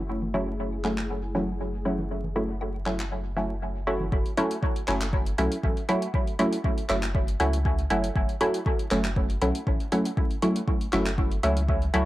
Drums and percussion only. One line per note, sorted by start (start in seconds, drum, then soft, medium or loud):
0.22 low conga medium
0.34 low woodblock medium
0.84 clap medium
0.98 clap medium
1.35 low conga medium
1.99 low conga medium
2.24 low conga medium
2.36 low woodblock medium
2.61 low woodblock medium
2.86 clap medium
3.00 clap medium
4.00 low conga medium
4.12 kick loud
4.26 closed hi-hat soft
4.37 open hi-hat medium
4.51 closed hi-hat soft
4.63 kick loud
4.76 closed hi-hat soft
4.88 clap medium
4.88 open hi-hat medium
5.01 clap medium
5.01 closed hi-hat soft
5.13 kick loud
5.26 closed hi-hat soft
5.38 open hi-hat medium
5.52 closed hi-hat soft
5.63 kick loud
5.77 closed hi-hat soft
5.89 open hi-hat medium
6.02 closed hi-hat soft
6.14 kick loud
6.27 closed hi-hat soft
6.39 open hi-hat medium
6.53 closed hi-hat medium
6.64 kick loud
6.78 closed hi-hat soft
6.89 clap medium
6.89 open hi-hat medium
7.03 clap medium
7.03 closed hi-hat medium
7.15 kick loud
7.28 closed hi-hat soft
7.40 open hi-hat medium
7.53 closed hi-hat soft
7.65 kick loud
7.79 closed hi-hat soft
7.90 open hi-hat medium
8.04 closed hi-hat medium
8.16 kick loud
8.29 closed hi-hat soft
8.41 open hi-hat medium
8.54 closed hi-hat medium
8.66 kick loud
8.79 closed hi-hat soft
8.91 clap medium
8.91 open hi-hat medium
9.05 clap medium
9.05 closed hi-hat soft
9.16 kick loud
9.30 closed hi-hat soft
9.42 open hi-hat medium
9.55 closed hi-hat soft
9.67 kick loud
9.80 closed hi-hat soft
9.92 open hi-hat medium
10.05 closed hi-hat soft
10.17 kick loud
10.31 closed hi-hat soft
10.42 open hi-hat medium
10.56 closed hi-hat soft
10.68 kick loud
10.81 closed hi-hat soft
10.93 clap medium
10.93 open hi-hat medium
11.06 clap medium
11.06 closed hi-hat soft
11.18 kick loud
11.31 closed hi-hat soft
11.43 open hi-hat medium
11.57 closed hi-hat soft
11.68 kick loud
11.82 closed hi-hat soft
11.94 open hi-hat medium